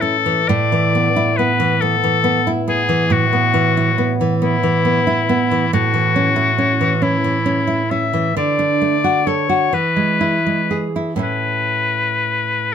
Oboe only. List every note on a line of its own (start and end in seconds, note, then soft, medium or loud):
0.01 0.50 A4 medium
0.48 1.38 D5 medium
1.37 1.83 B4 medium
1.81 2.52 A4 medium
2.69 3.14 G#4 medium
3.12 4.16 F#4 medium
4.43 5.69 E4 medium
5.74 7.04 F#4 medium
7.02 7.93 E4 medium
7.91 8.36 E5 medium
8.38 9.29 D5 medium
9.27 9.76 C#5 soft
9.74 10.91 B4 medium
11.23 12.74 B4 medium